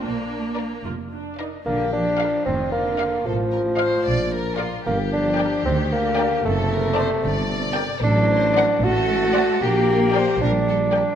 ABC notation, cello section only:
X:1
M:6/8
L:1/8
Q:3/8=75
K:Bb
V:1 name="Cello section" clef=bass
B,3 z3 | D, F,2 E, D,2 | A,,4- A,, z | D, F,2 E, D,2 |
C,4- C, z | [K:Gm] ^F,3 A,3 | B,3 G,3 |]